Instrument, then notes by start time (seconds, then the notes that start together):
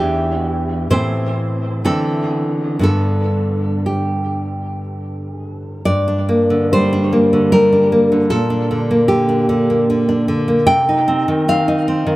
nylon-string guitar
Already playing: E2 E3 D4 G4
0.90 A2 E3 C4 C5
1.85 D3 E3 C4 A4
2.79 G2 D3 B3
2.83 A4
3.86 G4
5.85 G2 D5
6.08 D4
6.29 A#3
6.50 D3
6.73 G3 C5
6.93 D4
7.13 A#3
7.33 D3
7.52 G3 A#4
7.72 D4
7.92 A#3
8.12 D3
8.30 A#2 A4
8.50 D4
8.71 D3
8.91 A#3
9.08 D3 G4
9.29 D4
9.49 D3
9.70 A#3
9.90 D3
10.09 D4
10.28 D3
10.48 A#3
10.67 C3 G5
10.89 D#4
11.08 C4
11.28 D#3
11.48 C4 F5
11.68 D#4
11.88 C4
12.07 D#3